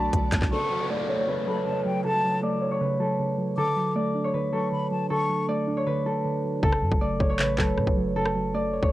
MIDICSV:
0, 0, Header, 1, 8, 480
1, 0, Start_track
1, 0, Key_signature, 3, "minor"
1, 0, Tempo, 382166
1, 647, Time_signature, 4, 2, 24, 8
1, 11205, End_track
2, 0, Start_track
2, 0, Title_t, "Flute"
2, 0, Program_c, 0, 73
2, 651, Note_on_c, 0, 85, 93
2, 1100, Note_off_c, 0, 85, 0
2, 1852, Note_on_c, 0, 83, 73
2, 2077, Note_off_c, 0, 83, 0
2, 2084, Note_on_c, 0, 81, 70
2, 2314, Note_off_c, 0, 81, 0
2, 2324, Note_on_c, 0, 79, 83
2, 2554, Note_off_c, 0, 79, 0
2, 2562, Note_on_c, 0, 81, 118
2, 3016, Note_off_c, 0, 81, 0
2, 4485, Note_on_c, 0, 86, 116
2, 4937, Note_off_c, 0, 86, 0
2, 5689, Note_on_c, 0, 85, 70
2, 5916, Note_off_c, 0, 85, 0
2, 5929, Note_on_c, 0, 83, 80
2, 6156, Note_off_c, 0, 83, 0
2, 6170, Note_on_c, 0, 81, 73
2, 6397, Note_off_c, 0, 81, 0
2, 6405, Note_on_c, 0, 85, 104
2, 6857, Note_off_c, 0, 85, 0
2, 11205, End_track
3, 0, Start_track
3, 0, Title_t, "Harp"
3, 0, Program_c, 1, 46
3, 0, Note_on_c, 1, 81, 77
3, 0, Note_on_c, 1, 83, 82
3, 0, Note_on_c, 1, 85, 82
3, 648, Note_on_c, 1, 69, 98
3, 1128, Note_on_c, 1, 74, 81
3, 1203, Note_off_c, 1, 85, 0
3, 1386, Note_off_c, 1, 83, 0
3, 1485, Note_on_c, 1, 73, 70
3, 1560, Note_off_c, 1, 74, 0
3, 1606, Note_on_c, 1, 71, 78
3, 1754, Note_off_c, 1, 81, 0
3, 1843, Note_off_c, 1, 69, 0
3, 1848, Note_on_c, 1, 69, 67
3, 2564, Note_off_c, 1, 69, 0
3, 2569, Note_on_c, 1, 69, 85
3, 3051, Note_on_c, 1, 74, 77
3, 3126, Note_off_c, 1, 73, 0
3, 3405, Note_on_c, 1, 73, 75
3, 3481, Note_off_c, 1, 74, 0
3, 3520, Note_off_c, 1, 71, 0
3, 3525, Note_on_c, 1, 71, 73
3, 3761, Note_off_c, 1, 69, 0
3, 3766, Note_on_c, 1, 69, 61
3, 4486, Note_off_c, 1, 69, 0
3, 4491, Note_on_c, 1, 69, 93
3, 4967, Note_on_c, 1, 74, 76
3, 5043, Note_off_c, 1, 73, 0
3, 5326, Note_on_c, 1, 73, 75
3, 5401, Note_off_c, 1, 74, 0
3, 5441, Note_off_c, 1, 71, 0
3, 5446, Note_on_c, 1, 71, 75
3, 5678, Note_off_c, 1, 69, 0
3, 5683, Note_on_c, 1, 69, 71
3, 6402, Note_off_c, 1, 69, 0
3, 6407, Note_on_c, 1, 69, 90
3, 6887, Note_on_c, 1, 74, 72
3, 6963, Note_off_c, 1, 73, 0
3, 7243, Note_on_c, 1, 73, 72
3, 7319, Note_off_c, 1, 74, 0
3, 7360, Note_off_c, 1, 71, 0
3, 7365, Note_on_c, 1, 71, 82
3, 7603, Note_off_c, 1, 69, 0
3, 7608, Note_on_c, 1, 69, 70
3, 8321, Note_off_c, 1, 69, 0
3, 8327, Note_on_c, 1, 69, 100
3, 8806, Note_on_c, 1, 74, 84
3, 8881, Note_off_c, 1, 73, 0
3, 9164, Note_on_c, 1, 73, 73
3, 9240, Note_off_c, 1, 74, 0
3, 9278, Note_off_c, 1, 71, 0
3, 9283, Note_on_c, 1, 71, 81
3, 9521, Note_off_c, 1, 69, 0
3, 9526, Note_on_c, 1, 69, 67
3, 10243, Note_off_c, 1, 69, 0
3, 10248, Note_on_c, 1, 69, 90
3, 10731, Note_on_c, 1, 74, 77
3, 10806, Note_off_c, 1, 73, 0
3, 11087, Note_on_c, 1, 73, 73
3, 11163, Note_off_c, 1, 74, 0
3, 11203, Note_off_c, 1, 71, 0
3, 11205, Note_off_c, 1, 69, 0
3, 11205, Note_off_c, 1, 73, 0
3, 11205, End_track
4, 0, Start_track
4, 0, Title_t, "Ambient pad"
4, 0, Program_c, 2, 92
4, 0, Note_on_c, 2, 59, 80
4, 0, Note_on_c, 2, 66, 74
4, 0, Note_on_c, 2, 69, 74
4, 0, Note_on_c, 2, 74, 94
4, 608, Note_off_c, 2, 66, 0
4, 608, Note_off_c, 2, 74, 0
4, 609, Note_off_c, 2, 59, 0
4, 609, Note_off_c, 2, 69, 0
4, 11205, End_track
5, 0, Start_track
5, 0, Title_t, "Synth keys"
5, 0, Program_c, 3, 88
5, 0, Control_c, 3, 64, 127
5, 0, Note_on_c, 3, 50, 90
5, 0, Note_on_c, 3, 54, 80
5, 0, Note_on_c, 3, 57, 88
5, 0, Note_on_c, 3, 62, 90
5, 153, Note_off_c, 3, 50, 0
5, 168, Note_on_c, 3, 50, 86
5, 392, Note_off_c, 3, 54, 0
5, 407, Note_off_c, 3, 57, 0
5, 407, Note_on_c, 3, 54, 80
5, 646, Note_off_c, 3, 62, 0
5, 646, Note_on_c, 3, 49, 79
5, 647, Note_off_c, 3, 50, 0
5, 647, Note_off_c, 3, 54, 0
5, 661, Control_c, 3, 64, 0
5, 886, Note_on_c, 3, 54, 72
5, 911, Control_c, 3, 64, 127
5, 1127, Note_on_c, 3, 57, 82
5, 1367, Note_on_c, 3, 73, 90
5, 1590, Note_off_c, 3, 49, 0
5, 1605, Note_on_c, 3, 49, 82
5, 1830, Note_off_c, 3, 54, 0
5, 1845, Note_on_c, 3, 54, 75
5, 2071, Note_off_c, 3, 49, 0
5, 2086, Note_on_c, 3, 49, 79
5, 2309, Note_off_c, 3, 54, 0
5, 2324, Note_on_c, 3, 54, 86
5, 2327, Note_off_c, 3, 57, 0
5, 2551, Note_off_c, 3, 49, 0
5, 2566, Note_on_c, 3, 49, 82
5, 2567, Note_off_c, 3, 73, 0
5, 2794, Note_off_c, 3, 54, 0
5, 2809, Note_on_c, 3, 54, 81
5, 3046, Note_on_c, 3, 57, 80
5, 3286, Note_on_c, 3, 73, 89
5, 3511, Note_off_c, 3, 49, 0
5, 3526, Note_on_c, 3, 49, 91
5, 3751, Note_off_c, 3, 54, 0
5, 3766, Note_on_c, 3, 54, 77
5, 3991, Note_off_c, 3, 49, 0
5, 4006, Note_on_c, 3, 49, 79
5, 4231, Note_off_c, 3, 54, 0
5, 4246, Note_off_c, 3, 57, 0
5, 4246, Note_on_c, 3, 54, 80
5, 4486, Note_off_c, 3, 49, 0
5, 4486, Note_off_c, 3, 73, 0
5, 4487, Note_off_c, 3, 54, 0
5, 4487, Note_on_c, 3, 50, 90
5, 4500, Control_c, 3, 64, 0
5, 4716, Control_c, 3, 64, 127
5, 4727, Note_on_c, 3, 54, 84
5, 4967, Note_on_c, 3, 57, 89
5, 5207, Note_on_c, 3, 62, 83
5, 5431, Note_off_c, 3, 50, 0
5, 5446, Note_on_c, 3, 50, 84
5, 5673, Note_off_c, 3, 54, 0
5, 5688, Note_on_c, 3, 54, 77
5, 5911, Note_off_c, 3, 50, 0
5, 5926, Note_on_c, 3, 50, 88
5, 6151, Note_off_c, 3, 54, 0
5, 6166, Note_on_c, 3, 54, 77
5, 6167, Note_off_c, 3, 57, 0
5, 6392, Note_off_c, 3, 50, 0
5, 6407, Note_off_c, 3, 62, 0
5, 6407, Note_on_c, 3, 50, 93
5, 6633, Note_off_c, 3, 54, 0
5, 6648, Note_on_c, 3, 54, 69
5, 6887, Note_on_c, 3, 57, 83
5, 7127, Note_on_c, 3, 62, 87
5, 7351, Note_off_c, 3, 50, 0
5, 7366, Note_on_c, 3, 50, 93
5, 7593, Note_off_c, 3, 54, 0
5, 7608, Note_on_c, 3, 54, 77
5, 7831, Note_off_c, 3, 50, 0
5, 7846, Note_on_c, 3, 50, 80
5, 8071, Note_off_c, 3, 54, 0
5, 8086, Note_on_c, 3, 54, 79
5, 8087, Note_off_c, 3, 57, 0
5, 8326, Note_off_c, 3, 50, 0
5, 8327, Note_off_c, 3, 54, 0
5, 8327, Note_off_c, 3, 62, 0
5, 8328, Note_on_c, 3, 49, 84
5, 8343, Control_c, 3, 64, 0
5, 8559, Control_c, 3, 64, 127
5, 8568, Note_on_c, 3, 54, 73
5, 8807, Note_on_c, 3, 57, 84
5, 9048, Note_on_c, 3, 73, 96
5, 9271, Note_off_c, 3, 49, 0
5, 9286, Note_on_c, 3, 49, 85
5, 9512, Note_off_c, 3, 54, 0
5, 9527, Note_on_c, 3, 54, 74
5, 9753, Note_off_c, 3, 49, 0
5, 9768, Note_on_c, 3, 49, 86
5, 9991, Note_off_c, 3, 54, 0
5, 10006, Note_on_c, 3, 54, 91
5, 10007, Note_off_c, 3, 57, 0
5, 10233, Note_off_c, 3, 49, 0
5, 10247, Note_off_c, 3, 73, 0
5, 10248, Note_on_c, 3, 49, 88
5, 10476, Note_off_c, 3, 54, 0
5, 10491, Note_on_c, 3, 54, 85
5, 10727, Note_on_c, 3, 57, 83
5, 10967, Note_on_c, 3, 73, 90
5, 11192, Note_off_c, 3, 49, 0
5, 11205, Note_off_c, 3, 54, 0
5, 11205, Note_off_c, 3, 57, 0
5, 11205, Note_off_c, 3, 73, 0
5, 11205, End_track
6, 0, Start_track
6, 0, Title_t, "808-style bass"
6, 0, Program_c, 4, 38
6, 166, Note_on_c, 4, 35, 108
6, 397, Note_off_c, 4, 35, 0
6, 407, Note_on_c, 4, 35, 108
6, 522, Note_off_c, 4, 35, 0
6, 527, Note_on_c, 4, 35, 100
6, 642, Note_off_c, 4, 35, 0
6, 8327, Note_on_c, 4, 30, 101
6, 8566, Note_on_c, 4, 42, 102
6, 8584, Note_off_c, 4, 30, 0
6, 8680, Note_off_c, 4, 42, 0
6, 8687, Note_on_c, 4, 30, 105
6, 9033, Note_off_c, 4, 30, 0
6, 9047, Note_on_c, 4, 30, 110
6, 9287, Note_on_c, 4, 33, 101
6, 9306, Note_off_c, 4, 30, 0
6, 9515, Note_off_c, 4, 33, 0
6, 9528, Note_on_c, 4, 30, 107
6, 9767, Note_on_c, 4, 45, 98
6, 9786, Note_off_c, 4, 30, 0
6, 9881, Note_off_c, 4, 45, 0
6, 9886, Note_on_c, 4, 30, 100
6, 11039, Note_off_c, 4, 30, 0
6, 11086, Note_on_c, 4, 30, 99
6, 11205, Note_off_c, 4, 30, 0
6, 11205, End_track
7, 0, Start_track
7, 0, Title_t, "Downlifter"
7, 0, Program_c, 5, 103
7, 647, Note_on_c, 5, 60, 78
7, 4487, Note_off_c, 5, 60, 0
7, 11205, End_track
8, 0, Start_track
8, 0, Title_t, "Drums"
8, 166, Note_on_c, 9, 42, 72
8, 167, Note_on_c, 9, 36, 91
8, 291, Note_off_c, 9, 42, 0
8, 292, Note_off_c, 9, 36, 0
8, 406, Note_on_c, 9, 42, 83
8, 407, Note_on_c, 9, 36, 93
8, 407, Note_on_c, 9, 39, 85
8, 527, Note_off_c, 9, 36, 0
8, 527, Note_on_c, 9, 36, 98
8, 528, Note_off_c, 9, 39, 0
8, 528, Note_on_c, 9, 39, 67
8, 532, Note_off_c, 9, 42, 0
8, 653, Note_off_c, 9, 36, 0
8, 653, Note_off_c, 9, 39, 0
8, 8327, Note_on_c, 9, 36, 115
8, 8447, Note_on_c, 9, 37, 100
8, 8452, Note_off_c, 9, 36, 0
8, 8573, Note_off_c, 9, 37, 0
8, 8687, Note_on_c, 9, 36, 99
8, 8813, Note_off_c, 9, 36, 0
8, 9046, Note_on_c, 9, 36, 94
8, 9172, Note_off_c, 9, 36, 0
8, 9286, Note_on_c, 9, 39, 115
8, 9412, Note_off_c, 9, 39, 0
8, 9526, Note_on_c, 9, 39, 97
8, 9528, Note_on_c, 9, 36, 102
8, 9652, Note_off_c, 9, 39, 0
8, 9653, Note_off_c, 9, 36, 0
8, 9767, Note_on_c, 9, 37, 67
8, 9886, Note_on_c, 9, 36, 97
8, 9893, Note_off_c, 9, 37, 0
8, 10012, Note_off_c, 9, 36, 0
8, 10367, Note_on_c, 9, 37, 106
8, 10493, Note_off_c, 9, 37, 0
8, 11086, Note_on_c, 9, 36, 91
8, 11205, Note_off_c, 9, 36, 0
8, 11205, End_track
0, 0, End_of_file